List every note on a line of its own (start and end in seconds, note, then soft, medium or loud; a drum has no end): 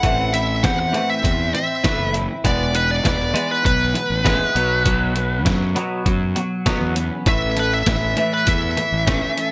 0.00 0.64 A1 medium
0.00 0.32 A2 medium
0.00 0.32 E3 medium
0.00 0.32 A3 medium
0.00 0.33 E4 medium
0.00 0.32 F#5 medium
0.00 kick loud
0.00 closed hi-hat medium
0.04 0.63 C4 medium
0.33 0.61 A2 medium
0.33 0.61 E3 medium
0.33 1.84 E4 medium
0.33 0.63 E5 loud
0.33 closed hi-hat medium
0.63 0.91 E2 loud
0.63 0.91 A2 medium
0.63 0.91 E3 medium
0.63 0.94 C4 medium
0.63 0.78 F#5 medium
0.63 kick loud
0.63 snare loud
0.63 closed hi-hat medium
0.79 1.08 F#5 medium
0.93 1.22 A2 medium
0.93 1.22 E3 medium
0.93 1.22 A3 medium
0.93 1.22 C4 medium
0.93 closed hi-hat medium
1.10 1.53 E5 medium
1.23 1.51 E2 loud
1.23 1.51 A2 medium
1.23 1.51 E3 medium
1.23 1.52 C4 medium
1.23 kick loud
1.23 closed hi-hat medium
1.53 1.81 A2 medium
1.53 1.81 E3 medium
1.53 2.44 C4 medium
1.53 2.13 E5 medium
1.53 closed hi-hat medium
1.84 2.12 A2 medium
1.84 2.12 E3 medium
1.84 2.13 A3 loud
1.84 4.25 B4 medium
1.84 kick loud
1.84 snare loud
1.84 closed hi-hat medium
1.98 2.26 F#1 medium
2.14 2.41 A2 medium
2.14 2.41 E3 medium
2.14 2.44 E4 medium
2.14 closed hi-hat medium
2.44 3.01 E1 medium
2.44 2.72 E3 medium
2.44 2.73 G#3 medium
2.44 3.03 B3 medium
2.44 2.73 B3 medium
2.44 2.75 D5 medium
2.44 kick loud
2.44 closed hi-hat medium
2.74 3.01 E3 medium
2.74 3.02 G#3 medium
2.74 4.25 D#4 medium
2.74 2.89 B4 medium
2.74 closed hi-hat medium
2.91 3.49 D5 medium
3.04 3.32 E1 medium
3.04 3.31 E3 medium
3.04 3.31 G#3 medium
3.04 3.33 B3 medium
3.04 kick loud
3.04 snare loud
3.04 closed hi-hat medium
3.34 3.63 E3 medium
3.34 3.63 G#3 medium
3.34 3.63 B3 medium
3.34 3.64 B3 medium
3.34 closed hi-hat medium
3.51 3.64 B4 medium
3.64 3.93 B1 medium
3.64 3.92 E3 medium
3.64 3.92 G#3 medium
3.64 3.94 B3 medium
3.64 5.42 B4 medium
3.64 kick loud
3.64 closed hi-hat loud
3.94 4.22 E3 medium
3.94 4.22 G#3 medium
3.94 4.55 B3 medium
3.94 closed hi-hat medium
4.10 4.38 A1 medium
4.25 4.53 E3 medium
4.25 4.54 G#3 medium
4.25 4.54 B3 loud
4.25 4.56 G#4 medium
4.25 kick loud
4.25 snare loud
4.25 closed hi-hat medium
4.55 5.45 B1 loud
4.55 4.84 B2 medium
4.55 4.84 F#3 medium
4.55 4.86 F#3 medium
4.55 4.84 B3 medium
4.55 closed hi-hat medium
4.85 5.14 B2 medium
4.85 5.14 F#3 medium
4.85 5.45 F#3 medium
4.85 5.14 B3 loud
4.85 kick loud
4.85 closed hi-hat medium
5.16 5.43 B2 medium
5.16 5.43 F#3 medium
5.16 6.67 B3 medium
5.16 closed hi-hat medium
5.45 5.73 F#2 medium
5.45 5.73 B2 medium
5.45 5.73 F#3 medium
5.45 5.75 F#3 medium
5.45 kick loud
5.45 snare loud
5.45 closed hi-hat medium
5.75 6.04 B2 medium
5.75 6.04 F#3 medium
5.75 6.05 F#3 medium
5.75 6.04 B3 loud
5.75 closed hi-hat medium
6.05 6.34 F#2 medium
6.05 6.33 B2 medium
6.05 6.33 F#3 medium
6.05 6.36 F#3 medium
6.05 kick loud
6.05 closed hi-hat medium
6.36 6.63 B2 medium
6.36 6.63 F#3 medium
6.36 7.26 F#3 medium
6.36 closed hi-hat medium
6.66 6.95 B2 medium
6.66 6.95 F#3 loud
6.66 6.95 B3 loud
6.66 7.27 C#4 medium
6.66 kick loud
6.66 snare loud
6.66 closed hi-hat medium
6.81 7.09 E2 loud
6.96 7.23 B2 medium
6.96 7.24 F#3 medium
6.96 7.27 B3 medium
6.96 closed hi-hat medium
7.26 7.83 A1 medium
7.26 7.55 A2 medium
7.26 7.86 E3 medium
7.26 7.55 E3 medium
7.26 7.55 A3 loud
7.26 7.57 E5 medium
7.26 kick loud
7.26 closed hi-hat medium
7.57 7.84 A2 medium
7.57 7.84 E3 medium
7.57 9.08 A3 medium
7.57 7.73 B4 medium
7.57 closed hi-hat medium
7.73 8.31 E5 medium
7.86 8.14 A1 medium
7.86 8.14 A2 medium
7.86 8.14 E3 medium
7.86 8.17 E3 medium
7.86 kick loud
7.86 snare loud
7.86 closed hi-hat medium
8.17 8.45 A2 medium
8.17 8.45 E3 medium
8.17 8.46 E3 medium
8.17 8.46 A3 loud
8.17 closed hi-hat medium
8.34 8.48 B4 medium
8.46 8.75 E2 medium
8.46 8.74 A2 medium
8.46 8.74 E3 medium
8.46 8.76 E3 medium
8.46 9.52 E5 medium
8.46 kick loud
8.46 closed hi-hat loud
8.77 9.04 A2 medium
8.77 9.04 E3 medium
8.77 9.52 E3 medium
8.77 closed hi-hat medium
8.92 9.20 A1 medium
9.07 9.35 A2 medium
9.07 9.36 E3 medium
9.07 9.36 A3 loud
9.07 9.52 C#4 medium
9.07 kick loud
9.07 snare loud
9.07 closed hi-hat medium
9.37 9.52 A2 medium
9.37 9.52 E3 medium
9.37 9.52 A3 medium
9.37 closed hi-hat medium